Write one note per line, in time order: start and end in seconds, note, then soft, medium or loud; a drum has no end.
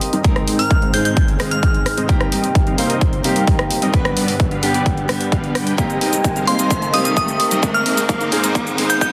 0.00 0.23 C3 medium
0.00 0.21 A#3 medium
0.00 0.23 A#3 medium
0.00 0.21 C4 medium
0.00 0.22 D#4 medium
0.00 0.23 D#4 medium
0.00 0.22 G4 medium
0.00 open hi-hat loud
0.00 riser medium
0.13 0.23 G3 medium
0.13 0.23 C4 medium
0.13 0.23 D#4 medium
0.13 0.23 A#4 medium
0.13 0.23 D#5 medium
0.13 closed hi-hat soft
0.23 2.07 G#2 medium
0.23 2.07 D#3 medium
0.23 0.90 G#3 medium
0.23 0.45 G#3 medium
0.23 0.91 C4 medium
0.23 2.07 C4 medium
0.23 0.45 C4 medium
0.23 0.45 D#4 medium
0.23 0.91 D#4 medium
0.23 0.92 A#4 medium
0.23 0.45 C5 medium
0.23 0.45 D#5 medium
0.23 kick loud
0.23 closed hi-hat soft
0.36 cross-stick medium
0.36 closed hi-hat soft
0.48 0.62 G#3 loud
0.48 0.62 C4 medium
0.48 0.62 D#4 medium
0.48 0.62 C5 medium
0.48 0.62 D#5 loud
0.48 open hi-hat loud
0.59 0.70 F6 medium
0.59 open hi-hat medium
0.71 kick loud
0.71 closed hi-hat medium
0.82 1.02 G#3 medium
0.82 1.02 C4 medium
0.82 1.02 D#4 medium
0.82 1.02 C5 medium
0.82 1.02 F5 medium
0.82 closed hi-hat soft
0.93 1.37 G#3 medium
0.93 1.37 C4 medium
0.93 1.37 D#4 medium
0.93 1.37 G#4 medium
0.93 1.01 G6 medium
0.93 open hi-hat loud
1.05 1.19 G#3 medium
1.05 1.19 C4 medium
1.05 1.19 D#4 medium
1.05 1.19 C5 medium
1.05 1.19 D#5 medium
1.05 1.13 G6 medium
1.05 closed hi-hat medium
1.17 kick loud
1.17 closed hi-hat medium
1.28 closed hi-hat soft
1.39 2.06 G#3 medium
1.39 1.60 G#3 medium
1.39 2.06 C4 medium
1.39 1.60 C4 medium
1.39 1.60 D#4 medium
1.39 2.07 D#4 medium
1.39 2.07 G#4 medium
1.39 1.60 C5 medium
1.39 1.60 F5 loud
1.39 cross-stick medium
1.39 open hi-hat loud
1.51 1.86 F6 medium
1.51 closed hi-hat medium
1.63 1.77 G#3 medium
1.63 1.77 C4 medium
1.63 1.77 D#4 medium
1.63 1.77 C5 medium
1.63 1.77 D#5 loud
1.63 kick loud
1.63 closed hi-hat soft
1.74 closed hi-hat soft
1.86 cross-stick medium
1.86 open hi-hat loud
1.98 2.07 G#3 medium
1.98 2.07 C4 medium
1.98 2.07 D#4 medium
1.98 2.07 C5 medium
1.98 2.07 D#5 medium
1.98 closed hi-hat soft
2.08 3.92 C3 medium
2.08 2.29 G3 medium
2.08 2.75 A#3 medium
2.08 3.92 A#3 medium
2.08 2.75 C4 medium
2.08 2.29 C4 medium
2.08 2.29 D#4 medium
2.08 3.92 D#4 medium
2.08 2.76 D#4 medium
2.08 2.76 G4 loud
2.08 2.29 A#4 medium
2.08 2.29 D#5 medium
2.08 kick loud
2.08 closed hi-hat soft
2.21 cross-stick medium
2.21 closed hi-hat soft
2.32 2.46 G3 loud
2.32 2.46 C4 medium
2.32 2.46 D#4 medium
2.32 2.46 A#4 medium
2.32 2.46 D#5 loud
2.32 open hi-hat loud
2.44 closed hi-hat soft
2.55 kick loud
2.55 closed hi-hat soft
2.67 2.87 G3 medium
2.67 2.87 C4 medium
2.67 2.87 D#4 medium
2.67 2.87 A#4 medium
2.67 2.87 F5 medium
2.67 closed hi-hat soft
2.78 3.21 A#3 medium
2.78 3.22 C4 medium
2.78 3.22 D#4 medium
2.78 3.22 C5 medium
2.78 open hi-hat loud
2.90 3.04 G3 medium
2.90 3.04 C4 medium
2.90 3.04 D#4 medium
2.90 3.04 A#4 medium
2.90 3.04 D#5 loud
2.90 closed hi-hat soft
3.01 kick loud
3.01 closed hi-hat medium
3.13 closed hi-hat soft
3.23 3.45 G3 loud
3.23 3.90 A#3 medium
3.23 3.91 C4 medium
3.23 3.45 C4 medium
3.23 3.45 D#4 medium
3.23 3.91 D#4 medium
3.23 3.92 G4 medium
3.23 3.45 A#4 medium
3.23 3.45 F5 loud
3.23 open hi-hat loud
3.36 closed hi-hat soft
3.47 3.62 G3 medium
3.47 3.62 C4 medium
3.47 3.62 D#4 medium
3.47 3.62 A#4 medium
3.47 3.62 D#5 loud
3.47 kick loud
3.47 open hi-hat medium
3.59 cross-stick medium
3.59 closed hi-hat soft
3.71 open hi-hat loud
3.82 3.92 G3 medium
3.82 3.92 C4 medium
3.82 3.92 D#4 medium
3.82 3.92 A#4 medium
3.82 3.92 D#5 medium
3.82 closed hi-hat soft
3.92 5.76 G2 medium
3.92 5.76 D3 medium
3.92 4.60 G3 medium
3.92 4.14 G3 medium
3.92 4.60 B3 medium
3.92 4.14 B3 medium
3.92 5.76 B3 medium
3.92 4.14 D4 medium
3.92 4.60 D4 medium
3.92 4.14 B4 medium
3.92 4.61 B4 medium
3.92 4.14 D5 medium
3.92 kick loud
3.92 closed hi-hat soft
4.05 cross-stick medium
4.05 closed hi-hat soft
4.17 4.31 G3 loud
4.17 4.31 B3 medium
4.17 4.31 D4 medium
4.17 4.31 B4 medium
4.17 4.31 D5 loud
4.17 open hi-hat loud
4.28 open hi-hat medium
4.40 kick loud
4.40 closed hi-hat soft
4.51 4.72 G3 medium
4.51 4.72 B3 medium
4.51 4.72 D4 medium
4.51 4.72 B4 medium
4.51 4.72 F5 medium
4.51 closed hi-hat soft
4.62 5.06 G3 medium
4.62 5.06 B3 medium
4.62 5.06 D4 medium
4.62 5.07 G4 medium
4.62 open hi-hat loud
4.74 4.88 G3 medium
4.74 4.88 B3 medium
4.74 4.88 D4 medium
4.74 4.88 B4 medium
4.74 4.88 D5 loud
4.74 closed hi-hat soft
4.86 kick loud
4.86 closed hi-hat soft
4.97 closed hi-hat soft
5.08 5.75 G3 medium
5.08 5.75 B3 medium
5.08 5.76 D4 medium
5.08 5.76 G4 medium
5.08 cross-stick medium
5.08 open hi-hat loud
5.21 closed hi-hat soft
5.32 5.52 G3 medium
5.32 5.52 B3 medium
5.32 5.52 D4 medium
5.32 5.52 B4 medium
5.32 5.52 F5 loud
5.32 kick loud
5.32 closed hi-hat soft
5.44 closed hi-hat soft
5.55 5.75 G3 medium
5.55 5.75 B3 medium
5.55 5.75 D4 medium
5.55 5.75 B4 medium
5.55 5.75 G5 medium
5.55 cross-stick medium
5.55 open hi-hat loud
5.67 closed hi-hat soft
5.77 7.61 C3 medium
5.77 5.99 G3 medium
5.77 6.44 A#3 medium
5.77 7.61 A#3 medium
5.77 6.45 C4 medium
5.77 5.99 C4 medium
5.77 5.99 D#4 medium
5.77 7.61 D#4 medium
5.77 6.45 D#4 medium
5.77 6.45 G4 loud
5.77 5.99 A#4 medium
5.77 5.99 D#5 medium
5.77 kick loud
5.77 closed hi-hat soft
5.77 shaker medium
5.90 closed hi-hat soft
5.90 shaker soft
6.01 6.15 G3 loud
6.01 6.15 C4 medium
6.01 6.15 D#4 medium
6.01 6.15 A#4 medium
6.01 6.15 D#5 loud
6.01 open hi-hat loud
6.13 closed hi-hat medium
6.13 shaker medium
6.24 kick loud
6.24 closed hi-hat medium
6.24 shaker medium
6.36 6.56 G3 medium
6.36 6.56 C4 medium
6.36 6.56 D#4 medium
6.36 6.56 A#4 medium
6.36 6.56 F5 medium
6.36 closed hi-hat soft
6.36 shaker soft
6.47 6.91 A#3 medium
6.47 6.91 C4 medium
6.47 6.91 D#4 medium
6.47 6.91 C5 medium
6.47 6.91 C6 medium
6.47 open hi-hat loud
6.59 6.73 G3 medium
6.59 6.73 C4 medium
6.59 6.73 D#4 medium
6.59 6.73 A#4 medium
6.59 6.73 D#5 loud
6.59 closed hi-hat soft
6.59 shaker medium
6.71 kick loud
6.71 closed hi-hat medium
6.71 shaker medium
6.82 closed hi-hat soft
6.82 shaker soft
6.92 7.14 G3 medium
6.92 7.60 A#3 medium
6.92 7.60 C4 medium
6.92 7.14 C4 medium
6.92 7.14 D#4 medium
6.92 7.60 D#4 medium
6.92 7.61 G4 medium
6.92 7.14 A#4 medium
6.92 7.14 F5 loud
6.92 7.01 D#6 medium
6.92 open hi-hat loud
7.05 7.13 D#6 medium
7.05 closed hi-hat medium
7.05 shaker medium
7.17 7.31 G3 medium
7.17 7.31 C4 medium
7.17 7.31 D#4 medium
7.17 7.31 A#4 medium
7.17 7.31 D#5 loud
7.17 7.51 D#6 medium
7.17 kick loud
7.17 open hi-hat medium
7.17 shaker medium
7.28 closed hi-hat soft
7.28 shaker soft
7.40 open hi-hat loud
7.51 7.61 G3 medium
7.51 7.61 C4 medium
7.51 7.61 D#4 medium
7.51 7.61 A#4 medium
7.51 7.61 D#5 medium
7.51 closed hi-hat soft
7.51 shaker medium
7.62 9.12 G#2 medium
7.62 9.12 D#3 medium
7.62 8.29 G#3 medium
7.62 7.83 G#3 medium
7.62 8.29 C4 medium
7.62 7.83 C4 medium
7.62 9.12 C4 medium
7.62 7.83 D#4 medium
7.62 8.30 D#4 medium
7.62 8.30 A#4 medium
7.62 7.83 C5 medium
7.62 7.83 D#5 medium
7.62 kick loud
7.62 closed hi-hat medium
7.62 shaker medium
7.74 7.85 F6 medium
7.74 closed hi-hat soft
7.74 shaker soft
7.86 8.00 G#3 loud
7.86 8.00 C4 medium
7.86 8.00 D#4 medium
7.86 8.00 C5 medium
7.86 8.00 D#5 loud
7.86 open hi-hat loud
7.97 open hi-hat medium
7.97 shaker medium
8.09 kick loud
8.09 closed hi-hat medium
8.09 shaker medium
8.21 8.41 G#3 medium
8.21 8.41 C4 medium
8.21 8.41 D#4 medium
8.21 8.41 C5 medium
8.21 8.41 F5 medium
8.21 closed hi-hat soft
8.21 shaker soft
8.31 8.75 G#3 medium
8.31 8.75 C4 medium
8.31 8.76 D#4 medium
8.31 8.76 G#4 medium
8.31 open hi-hat loud
8.44 8.58 G#3 medium
8.44 8.58 C4 medium
8.44 8.58 D#4 medium
8.44 8.58 C5 medium
8.44 8.58 D#5 loud
8.44 closed hi-hat soft
8.44 shaker medium
8.55 kick loud
8.55 closed hi-hat soft
8.55 shaker medium
8.67 closed hi-hat soft
8.67 shaker soft
8.77 9.12 G#3 medium
8.77 8.99 G#3 medium
8.77 9.12 C4 medium
8.77 8.99 C4 medium
8.77 8.99 D#4 medium
8.77 9.12 D#4 medium
8.77 9.12 G#4 medium
8.77 8.99 C5 medium
8.77 8.99 F5 loud
8.77 open hi-hat loud
8.90 8.97 G6 medium
8.90 closed hi-hat medium
8.90 shaker medium
9.01 9.12 G#3 medium
9.01 9.12 C4 medium
9.01 9.12 D#4 medium
9.01 9.12 C5 medium
9.01 9.12 D#5 loud
9.01 9.09 G6 medium
9.01 kick loud
9.01 closed hi-hat medium
9.01 shaker medium